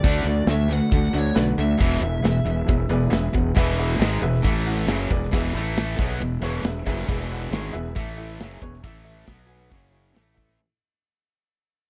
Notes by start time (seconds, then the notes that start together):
Already playing: D5
0.03 D2 D3 A3 D4 F#4 A4 D5, kick, closed hi-hat
0.24 D2 D3 A3 F#4 A4 D5, snare
0.46 D2 D3 A3 F#4 A4 C#5, snare, closed hi-hat
0.51 E5
0.71 D3 A3 F#4 A4 B4 F#5
0.91 D2 D3 A3 F#4 A4 D5, kick, closed hi-hat
1.04 snare
1.13 D2 D3 A3 F#4 A4 D5
1.18 C#5
1.34 B1 D3 A3 F#4 A4 B4 D5, snare, closed hi-hat
1.56 D2 D3 A3 F#4 A4 D5 E5
1.78 E1 E2 B2 E3 B3 E4 G#4 B4 E5, kick, closed hi-hat
1.93 snare
2.00 E1 E2 B2 G#4 B4 E5
2.22 E1 E2 B2 G#4 B4 E5, snare, closed hi-hat
2.44 E1 E2 B2 G#4 B4 E5
2.67 E1 E2 B2 G#4 B4 E5, kick, closed hi-hat
2.90 E1 E2 B2 G#4 B4 D5
3.10 E1 E2 B2 G#4 B4 E5, snare, closed hi-hat
3.33 E1 E2 B2 G#4 B4 F#5, kick
3.56 E1 E2 B2 E3 G#4 B4 E5, kick, crash
3.78 G#4 B4 E5
3.99 G#1 G#2 D#3 G#3 G#4 B4 E5, snare, ride bell
4.22 E1 E2 B2 G#4 B4 E5
4.34 snare
4.44 A1 A2 E3 A3 E4 A4 E5, kick, ride bell
4.66 E4 A4 F#5
4.87 F#1 F#2 C#3 F#3 G#4 B4 E5, snare, ride bell
5.10 E1 E2 B2 G#4 B4 D5, kick
5.23 snare
5.33 E1 E2 B2 E3 G#4 B4 E5, kick, ride bell
5.53 A1 A2 E3 A3 E4 A4 E5
5.77 snare, ride bell
5.98 B1 B2 F#3 B3 G#4 B4 E5, kick
6.20 E1 E2 B2, ride bell
6.42 E1 E2 B2 E3 G#4 B4 C#5
6.63 E1 E2 B2 G#4 B4 E5, snare, ride bell
6.76 A3 B3
6.82 C4 D4
6.86 F#1 F#2 C#3 F#3 E4 F4 G#4 B4 E5, kick
6.92 G4 A4
6.98 B4 C5, snare
7.03 E2 B3 E4 G#4 D5 E5
7.08 E1 B2 E3 G#4 B4 E5, kick, ride bell
7.21 snare
7.31 G#4 B4 F#5
7.51 G#1 G#2 D#3 G#3 G#4 B4 C#5, snare, ride bell
7.73 E1 E2 B2 G#4 B4 E5
7.95 A1 A2 E3 A3 E4 A4 E5, kick, ride bell
8.18 E4 A4 E5
8.38 F#1 F#2 B3 E4 G#4 B4 E5, snare, ride bell
8.42 C#3 F#3 E5
8.62 E1 E2 B2 G#4 B4 C#5, kick
8.73 snare
8.80 A1 E4 A4 E5, kick, ride bell
8.85 A2 E3 A3
9.04 E4 A4 E5
9.26 B1 B2 F#3 B3 F#4 B4 F#5, kick, snare, ride bell
9.46 F#4 B4 G#5
9.62 snare
9.69 F#1 F#2 C#3 F#3 F#4 C#5 F#5, kick, ride bell
9.91 F#4 C#5 G#5
10.12 A1 A2 E4 A4 E5
10.16 E3 A3 E4, snare, ride bell
10.34 E4 A4 E5, kick
10.49 snare